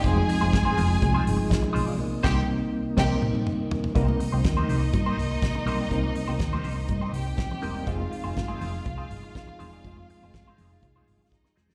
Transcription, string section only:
\new Staff \with { instrumentName = "String section" } { \time 4/4 \key c \minor \tempo 4 = 122 <aes' aes''>2.~ <aes' aes''>8 r8 | r8 <g' g''>8 r4 <g' g''>8 r4. | <ees' ees''>1~ | <ees' ees''>2~ <ees' ees''>8 <g' g''>4. |
<f' f''>1~ | <f' f''>2. <ees' ees''>4 | }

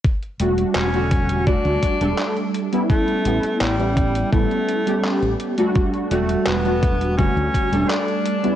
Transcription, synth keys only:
\new Staff \with { instrumentName = "Synth keys" } { \time 4/4 \key e \dorian \tempo 4 = 84 r8 <g a d' fis'>8. <d g a fis'>8. <g a d' fis'>8. <g a d' a'>4 <g b cis' e'>16~ | <g b cis' e'>8 <g b cis' e'>8. <g b cis' e'>8. <g b cis' e'>8. <g b cis' g'>4 <g a d' fis'>16~ | <g a d' fis'>8 <g a d' fis'>8. <g a d' fis'>8. <d g a fis'>8. <g a d' a'>4 <g b cis' e'>16 | }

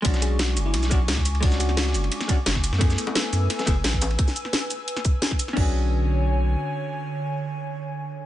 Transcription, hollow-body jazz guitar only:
\new Staff \with { instrumentName = "Hollow-body jazz guitar" } { \time 4/4 \key b \dorian \tempo 4 = 174 <gis cis' d' fis'>2~ <gis cis' d' fis'>8 <gis cis' d' fis'>8 r4 | <gis cis' d' fis'>2~ <gis cis' d' fis'>8 <gis cis' d' fis'>8 r4 | <a b e' gis'>2~ <a b e' gis'>8 <a b e' gis'>8 r4 | r1 |
<cis' d' fis' gis'>1~ | <cis' d' fis' gis'>1 | }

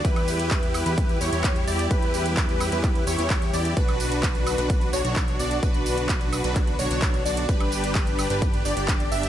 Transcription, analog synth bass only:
\new Staff \with { instrumentName = "Analog synth bass" } { \clef bass \time 4/4 \key b \minor \tempo 4 = 129 e,4.~ e,16 e,8. e,16 e,8. e,8 | e,4.~ e,16 e,8. e,16 e,8. e,8 | b,,4.~ b,,16 b,,8. b,,16 b,,8. b,,8 | b,,4.~ b,,16 b,,8. b,,16 b,,8. b,,8 |
g,,4.~ g,,16 g,,8. g,,16 g,,8. g,,8 | }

